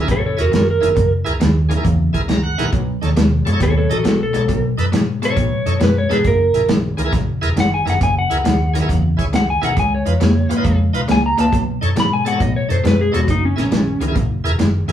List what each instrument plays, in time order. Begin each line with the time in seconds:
0.00 tonewheel organ E4 G#4 A#4
0.08 fingered electric bass A#1, overdriven electric guitar F#2 C#3, electric slide guitar A4 C#5, kick, closed hi-hat
0.26 electric slide guitar A4 C#5
0.37 fingered electric bass E1, tonewheel organ E4 G#4 A#4, electric slide guitar F#4, closed hi-hat
0.41 electric slide guitar A#4
0.52 overdriven electric guitar F#2 D#3, electric slide guitar F#4, snare, closed hi-hat
0.56 electric slide guitar A#4
0.71 electric slide guitar A#4
0.81 fingered electric bass F#1, overdriven electric guitar F#2 D#3, tonewheel organ E4 G#4 A#4, closed hi-hat
0.95 fingered electric bass F#1, overdriven electric guitar F#2 C#3, kick, closed hi-hat
1.25 fingered electric bass C#2, tonewheel organ E4 G#4 A#4, closed hi-hat
1.40 fingered electric bass D#2, overdriven electric guitar F#2 D#3, snare, closed hi-hat
1.69 overdriven electric guitar F#2 D#3, tonewheel organ G#4 A#4, closed hi-hat
1.76 tonewheel organ E4 G#4 A#4
1.83 fingered electric bass E2, overdriven electric guitar F#2 C#3, kick, closed hi-hat
2.13 fingered electric bass C#2, tonewheel organ E4 G#4 A#4, kick, closed hi-hat
2.28 fingered electric bass C#2, overdriven electric guitar F#2 D#3, tonewheel organ A#5, snare, closed hi-hat
2.44 tonewheel organ F#5
2.58 fingered electric bass A#1, overdriven electric guitar F#2 D#3, tonewheel organ E4 G#4 A#4, snare, closed hi-hat
2.73 fingered electric bass B1, overdriven electric guitar B2 F#3, kick, closed hi-hat
3.01 fingered electric bass D#2, tonewheel organ D#4 A4 C#5, snare, closed hi-hat
3.16 fingered electric bass D#2, overdriven electric guitar B2 G#3, snare, closed hi-hat
3.45 fingered electric bass F#2, overdriven electric guitar B2 G#3, tonewheel organ A4 C#5, closed hi-hat
3.52 tonewheel organ D#4 A4 C#5
3.60 fingered electric bass D#2, overdriven electric guitar B2 F#3, electric slide guitar A4 C#5, kick, snare, closed hi-hat
3.78 electric slide guitar A4 C#5
3.90 fingered electric bass A1, tonewheel organ D#4 A4 D#5, electric slide guitar F#4 A4, closed hi-hat
4.04 fingered electric bass B1, overdriven electric guitar B2 G#3, electric slide guitar F#4 A4, snare, closed hi-hat
4.23 electric slide guitar A4
4.33 fingered electric bass B1, overdriven electric guitar B2 G#3, tonewheel organ D#4 A4 C#5, closed hi-hat
4.48 fingered electric bass B1, overdriven electric guitar B2 F#3, kick, closed hi-hat
4.78 fingered electric bass F#2, tonewheel organ D#4 A4 B4, closed hi-hat
4.92 fingered electric bass G#2, overdriven electric guitar B2 G#3, snare, closed hi-hat
5.22 overdriven electric guitar B2 G#3, tonewheel organ A4 C#5, electric slide guitar C#5, closed hi-hat
5.29 tonewheel organ D#4 A4 C#5
5.36 fingered electric bass A2, overdriven electric guitar B2 F#3, kick, closed hi-hat
5.66 fingered electric bass F#2, tonewheel organ D#4 A4 C#5, closed hi-hat
5.80 fingered electric bass F#2, overdriven electric guitar B2 G#3, electric slide guitar B4, snare, closed hi-hat
5.98 electric slide guitar C#5
6.09 fingered electric bass G#2, overdriven electric guitar B2 G#3, tonewheel organ D#4 A4 B4, electric slide guitar G#4, snare, closed hi-hat
6.24 fingered electric bass F#1, overdriven electric guitar F#2 C#3, electric slide guitar A#4, kick, closed hi-hat
6.54 fingered electric bass A#1, tonewheel organ E4 G#4 A#4, closed hi-hat
6.68 fingered electric bass A#1, overdriven electric guitar F#2 D#3, snare, closed hi-hat
6.97 fingered electric bass C#2, overdriven electric guitar F#2 D#3, tonewheel organ G#4 A#4, closed hi-hat
7.04 tonewheel organ E4 G#4 A#4
7.12 fingered electric bass A#1, overdriven electric guitar F#2 C#3, kick, snare, closed hi-hat
7.41 fingered electric bass E1, tonewheel organ E4 G#4 A#4, closed hi-hat
7.56 fingered electric bass F#1, overdriven electric guitar F#2 D#3, snare, closed hi-hat
7.60 electric slide guitar F#5
7.74 electric slide guitar G#5
7.85 fingered electric bass F#1, overdriven electric guitar F#2 D#3, tonewheel organ E4 G#4 A#4, snare, closed hi-hat
7.90 electric slide guitar F#5
8.01 fingered electric bass F#1, overdriven electric guitar F#2 C#3, electric slide guitar G#5, kick, closed hi-hat
8.19 electric slide guitar F#5
8.30 fingered electric bass C#2, tonewheel organ E4 G#4 A#4, closed hi-hat
8.44 fingered electric bass D#2, overdriven electric guitar F#2 D#3, snare, closed hi-hat
8.74 overdriven electric guitar F#2 D#3, tonewheel organ G#4 A#4, closed hi-hat
8.80 tonewheel organ E4 G#4 A#4
8.89 fingered electric bass E2, overdriven electric guitar F#2 C#3, kick, closed hi-hat
9.17 tonewheel organ E4 G#4 C#5, kick, closed hi-hat
9.33 fingered electric bass C#2, overdriven electric guitar F#2 D#3, electric slide guitar F#5, snare, closed hi-hat
9.50 electric slide guitar G#5
9.62 fingered electric bass B1, overdriven electric guitar F#2 D#3, tonewheel organ E4 G#4 A#4, electric slide guitar F#5, closed hi-hat
9.76 fingered electric bass C#2, overdriven electric guitar C#3 G#3, electric slide guitar G#5, kick, closed hi-hat
9.95 electric slide guitar C#5
10.06 fingered electric bass F2, tonewheel organ D#4 F4 B4, closed hi-hat
10.20 fingered electric bass F2, overdriven electric guitar C#3 A#3, snare, closed hi-hat
10.49 fingered electric bass G#2, overdriven electric guitar C#3 A#3, tonewheel organ F4 B4, closed hi-hat
10.56 tonewheel organ D#4 F4 B4
10.64 fingered electric bass F2, overdriven electric guitar C#3 G#3, kick, closed hi-hat
10.93 fingered electric bass B1, tonewheel organ D#4 F4 B4, closed hi-hat
11.08 fingered electric bass C#2, overdriven electric guitar C#3 A#3, electric slide guitar G#5, snare, closed hi-hat
11.26 electric slide guitar A#5
11.37 fingered electric bass C#2, overdriven electric guitar C#3 A#3, tonewheel organ D#4 F4 B4, electric slide guitar A5, closed hi-hat
11.52 fingered electric bass B1, overdriven electric guitar B2 F#3, kick, closed hi-hat
11.81 fingered electric bass F#2, tonewheel organ D#4 A4 C#5, closed hi-hat
11.96 fingered electric bass G#2, overdriven electric guitar B2 G#3, electric slide guitar B5, snare, closed hi-hat
12.13 electric slide guitar G#5
12.25 overdriven electric guitar B2 G#3, tonewheel organ A4 C#5, electric slide guitar F#5, closed hi-hat
12.32 tonewheel organ D#4 A4 C#5
12.40 fingered electric bass A2, overdriven electric guitar B2 F#3, electric slide guitar D#5, kick, closed hi-hat
12.56 electric slide guitar C#5
12.69 fingered electric bass F#2, tonewheel organ D#4 A4 C#5, electric slide guitar C5, closed hi-hat
12.84 fingered electric bass F#2, overdriven electric guitar B2 G#3, electric slide guitar B4, snare, closed hi-hat
13.01 electric slide guitar G#4
13.12 fingered electric bass E1, overdriven electric guitar B2 G#3, tonewheel organ D#4 A4 C#5, electric slide guitar F#4, closed hi-hat
13.27 overdriven electric guitar F#2 C#3, electric slide guitar D#4, kick, closed hi-hat
13.45 electric slide guitar C#4
13.56 fingered electric bass A#1, electric slide guitar C#4, tonewheel organ E4 G#4 A#4, snare, closed hi-hat
13.71 fingered electric bass A#1, overdriven electric guitar F#2 D#3, snare, closed hi-hat
14.00 fingered electric bass C#2, overdriven electric guitar F#2 D#3, tonewheel organ G#4 A#4, closed hi-hat
14.07 tonewheel organ E4 G#4 A#4
14.15 fingered electric bass A#1, overdriven electric guitar F#2 C#3, kick, closed hi-hat
14.44 fingered electric bass E1, tonewheel organ E4 G#4 A#4, closed hi-hat
14.59 fingered electric bass F#1, overdriven electric guitar F#2 D#3, snare, closed hi-hat
14.88 fingered electric bass F#1, overdriven electric guitar F#2 D#3, tonewheel organ E4 G#4, closed hi-hat